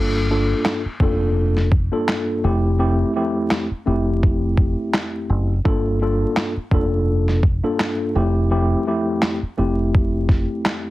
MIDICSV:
0, 0, Header, 1, 5, 480
1, 0, Start_track
1, 0, Tempo, 714286
1, 1878, Time_signature, 4, 2, 24, 8
1, 7326, End_track
2, 0, Start_track
2, 0, Title_t, "Tine electric piano"
2, 0, Program_c, 0, 4
2, 0, Note_on_c, 0, 43, 86
2, 0, Note_on_c, 0, 58, 89
2, 0, Note_on_c, 0, 62, 84
2, 0, Note_on_c, 0, 65, 78
2, 0, Note_on_c, 0, 69, 100
2, 178, Note_off_c, 0, 43, 0
2, 179, Note_off_c, 0, 58, 0
2, 180, Note_off_c, 0, 62, 0
2, 181, Note_off_c, 0, 65, 0
2, 182, Note_off_c, 0, 69, 0
2, 200, Note_on_c, 0, 43, 94
2, 202, Note_on_c, 0, 58, 76
2, 205, Note_on_c, 0, 62, 92
2, 207, Note_on_c, 0, 65, 90
2, 209, Note_on_c, 0, 69, 104
2, 540, Note_off_c, 0, 43, 0
2, 541, Note_off_c, 0, 58, 0
2, 543, Note_off_c, 0, 62, 0
2, 544, Note_off_c, 0, 65, 0
2, 545, Note_off_c, 0, 69, 0
2, 678, Note_on_c, 0, 43, 87
2, 680, Note_on_c, 0, 58, 78
2, 682, Note_on_c, 0, 62, 87
2, 684, Note_on_c, 0, 65, 78
2, 687, Note_on_c, 0, 69, 98
2, 1124, Note_off_c, 0, 43, 0
2, 1125, Note_off_c, 0, 58, 0
2, 1126, Note_off_c, 0, 62, 0
2, 1127, Note_off_c, 0, 65, 0
2, 1128, Note_off_c, 0, 69, 0
2, 1287, Note_on_c, 0, 43, 100
2, 1290, Note_on_c, 0, 58, 85
2, 1292, Note_on_c, 0, 62, 89
2, 1294, Note_on_c, 0, 65, 80
2, 1296, Note_on_c, 0, 69, 99
2, 1636, Note_off_c, 0, 43, 0
2, 1636, Note_on_c, 0, 41, 95
2, 1638, Note_off_c, 0, 58, 0
2, 1638, Note_on_c, 0, 57, 85
2, 1639, Note_off_c, 0, 62, 0
2, 1640, Note_off_c, 0, 65, 0
2, 1640, Note_on_c, 0, 60, 87
2, 1641, Note_off_c, 0, 69, 0
2, 1643, Note_on_c, 0, 64, 86
2, 1644, Note_on_c, 0, 67, 104
2, 1860, Note_off_c, 0, 41, 0
2, 1861, Note_off_c, 0, 57, 0
2, 1862, Note_off_c, 0, 60, 0
2, 1863, Note_off_c, 0, 64, 0
2, 1864, Note_off_c, 0, 67, 0
2, 1873, Note_on_c, 0, 41, 89
2, 1876, Note_on_c, 0, 57, 79
2, 1878, Note_on_c, 0, 60, 91
2, 1880, Note_on_c, 0, 64, 84
2, 1882, Note_on_c, 0, 67, 105
2, 2099, Note_off_c, 0, 41, 0
2, 2100, Note_off_c, 0, 57, 0
2, 2101, Note_off_c, 0, 60, 0
2, 2102, Note_off_c, 0, 64, 0
2, 2103, Note_off_c, 0, 67, 0
2, 2119, Note_on_c, 0, 41, 96
2, 2122, Note_on_c, 0, 57, 89
2, 2123, Note_on_c, 0, 60, 90
2, 2126, Note_on_c, 0, 64, 84
2, 2128, Note_on_c, 0, 67, 103
2, 2460, Note_off_c, 0, 41, 0
2, 2461, Note_off_c, 0, 57, 0
2, 2462, Note_off_c, 0, 60, 0
2, 2463, Note_off_c, 0, 64, 0
2, 2464, Note_off_c, 0, 67, 0
2, 2591, Note_on_c, 0, 41, 93
2, 2593, Note_on_c, 0, 57, 86
2, 2595, Note_on_c, 0, 60, 86
2, 2598, Note_on_c, 0, 64, 83
2, 2600, Note_on_c, 0, 67, 92
2, 3709, Note_off_c, 0, 41, 0
2, 3710, Note_off_c, 0, 57, 0
2, 3711, Note_off_c, 0, 60, 0
2, 3712, Note_off_c, 0, 64, 0
2, 3713, Note_off_c, 0, 67, 0
2, 3792, Note_on_c, 0, 43, 84
2, 3794, Note_on_c, 0, 58, 89
2, 3796, Note_on_c, 0, 62, 85
2, 3799, Note_on_c, 0, 65, 85
2, 3801, Note_on_c, 0, 69, 100
2, 4018, Note_off_c, 0, 43, 0
2, 4019, Note_off_c, 0, 58, 0
2, 4020, Note_off_c, 0, 62, 0
2, 4021, Note_off_c, 0, 65, 0
2, 4023, Note_off_c, 0, 69, 0
2, 4040, Note_on_c, 0, 43, 96
2, 4042, Note_on_c, 0, 58, 77
2, 4044, Note_on_c, 0, 62, 92
2, 4047, Note_on_c, 0, 65, 89
2, 4049, Note_on_c, 0, 69, 102
2, 4380, Note_off_c, 0, 43, 0
2, 4381, Note_off_c, 0, 58, 0
2, 4382, Note_off_c, 0, 62, 0
2, 4383, Note_off_c, 0, 65, 0
2, 4385, Note_off_c, 0, 69, 0
2, 4518, Note_on_c, 0, 43, 90
2, 4520, Note_on_c, 0, 58, 79
2, 4522, Note_on_c, 0, 62, 91
2, 4524, Note_on_c, 0, 65, 77
2, 4527, Note_on_c, 0, 69, 105
2, 4964, Note_off_c, 0, 43, 0
2, 4965, Note_off_c, 0, 58, 0
2, 4966, Note_off_c, 0, 62, 0
2, 4967, Note_off_c, 0, 65, 0
2, 4968, Note_off_c, 0, 69, 0
2, 5128, Note_on_c, 0, 43, 100
2, 5129, Note_on_c, 0, 58, 86
2, 5132, Note_on_c, 0, 62, 88
2, 5134, Note_on_c, 0, 65, 82
2, 5136, Note_on_c, 0, 69, 100
2, 5476, Note_on_c, 0, 41, 96
2, 5477, Note_off_c, 0, 43, 0
2, 5478, Note_off_c, 0, 58, 0
2, 5478, Note_on_c, 0, 57, 84
2, 5479, Note_off_c, 0, 62, 0
2, 5480, Note_off_c, 0, 65, 0
2, 5480, Note_on_c, 0, 60, 88
2, 5481, Note_off_c, 0, 69, 0
2, 5482, Note_on_c, 0, 64, 83
2, 5484, Note_on_c, 0, 67, 106
2, 5700, Note_off_c, 0, 41, 0
2, 5701, Note_off_c, 0, 57, 0
2, 5702, Note_off_c, 0, 60, 0
2, 5703, Note_off_c, 0, 64, 0
2, 5704, Note_off_c, 0, 67, 0
2, 5714, Note_on_c, 0, 41, 92
2, 5716, Note_on_c, 0, 57, 80
2, 5718, Note_on_c, 0, 60, 91
2, 5720, Note_on_c, 0, 64, 83
2, 5723, Note_on_c, 0, 67, 106
2, 5939, Note_off_c, 0, 41, 0
2, 5940, Note_off_c, 0, 57, 0
2, 5941, Note_off_c, 0, 60, 0
2, 5942, Note_off_c, 0, 64, 0
2, 5944, Note_off_c, 0, 67, 0
2, 5959, Note_on_c, 0, 41, 96
2, 5962, Note_on_c, 0, 57, 89
2, 5964, Note_on_c, 0, 60, 88
2, 5966, Note_on_c, 0, 64, 86
2, 5968, Note_on_c, 0, 67, 98
2, 6300, Note_off_c, 0, 41, 0
2, 6301, Note_off_c, 0, 57, 0
2, 6302, Note_off_c, 0, 60, 0
2, 6303, Note_off_c, 0, 64, 0
2, 6304, Note_off_c, 0, 67, 0
2, 6431, Note_on_c, 0, 41, 91
2, 6434, Note_on_c, 0, 57, 85
2, 6436, Note_on_c, 0, 60, 84
2, 6438, Note_on_c, 0, 64, 78
2, 6440, Note_on_c, 0, 67, 91
2, 7326, Note_off_c, 0, 41, 0
2, 7326, Note_off_c, 0, 57, 0
2, 7326, Note_off_c, 0, 60, 0
2, 7326, Note_off_c, 0, 64, 0
2, 7326, Note_off_c, 0, 67, 0
2, 7326, End_track
3, 0, Start_track
3, 0, Title_t, "Fingered electric bass"
3, 0, Program_c, 1, 33
3, 0, Note_on_c, 1, 31, 95
3, 350, Note_off_c, 1, 31, 0
3, 672, Note_on_c, 1, 29, 96
3, 1261, Note_off_c, 1, 29, 0
3, 1639, Note_on_c, 1, 29, 93
3, 2030, Note_off_c, 1, 29, 0
3, 2600, Note_on_c, 1, 29, 90
3, 3185, Note_off_c, 1, 29, 0
3, 3559, Note_on_c, 1, 30, 88
3, 3755, Note_off_c, 1, 30, 0
3, 3800, Note_on_c, 1, 31, 97
3, 4190, Note_off_c, 1, 31, 0
3, 4512, Note_on_c, 1, 29, 100
3, 5101, Note_off_c, 1, 29, 0
3, 5480, Note_on_c, 1, 29, 97
3, 5870, Note_off_c, 1, 29, 0
3, 6439, Note_on_c, 1, 29, 90
3, 7025, Note_off_c, 1, 29, 0
3, 7326, End_track
4, 0, Start_track
4, 0, Title_t, "Muted fingered electric bass strokes"
4, 573, Note_on_c, 9, 29, 47
4, 640, Note_off_c, 9, 29, 0
4, 2492, Note_on_c, 9, 29, 46
4, 2559, Note_off_c, 9, 29, 0
4, 4412, Note_on_c, 9, 29, 48
4, 4480, Note_off_c, 9, 29, 0
4, 6332, Note_on_c, 9, 29, 48
4, 6400, Note_off_c, 9, 29, 0
4, 7326, End_track
5, 0, Start_track
5, 0, Title_t, "Drums"
5, 439, Note_on_c, 9, 38, 117
5, 440, Note_on_c, 9, 39, 95
5, 506, Note_off_c, 9, 38, 0
5, 507, Note_off_c, 9, 39, 0
5, 672, Note_on_c, 9, 36, 80
5, 739, Note_off_c, 9, 36, 0
5, 1053, Note_on_c, 9, 38, 36
5, 1120, Note_off_c, 9, 38, 0
5, 1154, Note_on_c, 9, 36, 91
5, 1221, Note_off_c, 9, 36, 0
5, 1400, Note_on_c, 9, 38, 118
5, 1401, Note_on_c, 9, 39, 99
5, 1468, Note_off_c, 9, 38, 0
5, 1469, Note_off_c, 9, 39, 0
5, 2359, Note_on_c, 9, 38, 123
5, 2360, Note_on_c, 9, 39, 93
5, 2426, Note_off_c, 9, 38, 0
5, 2427, Note_off_c, 9, 39, 0
5, 2843, Note_on_c, 9, 36, 97
5, 2910, Note_off_c, 9, 36, 0
5, 3074, Note_on_c, 9, 36, 90
5, 3141, Note_off_c, 9, 36, 0
5, 3320, Note_on_c, 9, 38, 117
5, 3321, Note_on_c, 9, 39, 94
5, 3387, Note_off_c, 9, 38, 0
5, 3388, Note_off_c, 9, 39, 0
5, 3799, Note_on_c, 9, 36, 105
5, 3866, Note_off_c, 9, 36, 0
5, 4279, Note_on_c, 9, 38, 117
5, 4280, Note_on_c, 9, 39, 97
5, 4346, Note_off_c, 9, 38, 0
5, 4347, Note_off_c, 9, 39, 0
5, 4512, Note_on_c, 9, 36, 86
5, 4579, Note_off_c, 9, 36, 0
5, 4893, Note_on_c, 9, 38, 36
5, 4960, Note_off_c, 9, 38, 0
5, 4994, Note_on_c, 9, 36, 94
5, 5061, Note_off_c, 9, 36, 0
5, 5240, Note_on_c, 9, 38, 118
5, 5241, Note_on_c, 9, 39, 99
5, 5307, Note_off_c, 9, 38, 0
5, 5308, Note_off_c, 9, 39, 0
5, 6198, Note_on_c, 9, 38, 124
5, 6200, Note_on_c, 9, 39, 100
5, 6266, Note_off_c, 9, 38, 0
5, 6267, Note_off_c, 9, 39, 0
5, 6683, Note_on_c, 9, 36, 97
5, 6750, Note_off_c, 9, 36, 0
5, 6914, Note_on_c, 9, 36, 89
5, 6921, Note_on_c, 9, 38, 36
5, 6981, Note_off_c, 9, 36, 0
5, 6988, Note_off_c, 9, 38, 0
5, 7160, Note_on_c, 9, 38, 119
5, 7161, Note_on_c, 9, 39, 94
5, 7227, Note_off_c, 9, 38, 0
5, 7228, Note_off_c, 9, 39, 0
5, 7326, End_track
0, 0, End_of_file